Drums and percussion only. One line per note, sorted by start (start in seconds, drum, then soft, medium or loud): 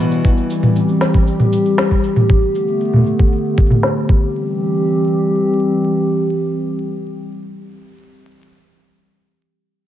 0.12 shaker soft
0.25 kick loud
0.25 shaker soft
0.38 shaker soft
0.50 shaker medium
0.63 mid tom medium
0.63 shaker soft
0.76 shaker soft
0.89 shaker soft
1.01 snare medium
1.01 shaker medium
1.14 kick loud
1.14 shaker soft
1.27 shaker soft
1.40 mid tom medium
1.40 shaker soft
1.53 shaker medium
1.66 shaker soft
1.78 snare medium
1.78 shaker soft
1.91 kick medium
1.91 shaker soft
2.04 shaker medium
2.16 mid tom medium
2.16 shaker soft
2.29 kick loud
2.29 shaker soft
2.42 shaker soft
2.55 shaker medium
2.68 shaker soft
2.81 shaker soft
2.93 mid tom medium
2.93 shaker soft
2.96 mid tom soft
2.99 mid tom soft
3.01 mid tom soft
3.04 mid tom soft
3.04 shaker medium
3.19 kick medium
3.19 shaker soft
3.32 shaker soft
3.45 shaker soft
3.58 kick loud
3.58 shaker medium
3.66 shaker medium
3.70 mid tom medium
3.70 shaker soft
3.75 shaker soft
3.83 snare medium
3.83 shaker soft
3.96 shaker soft
4.09 kick loud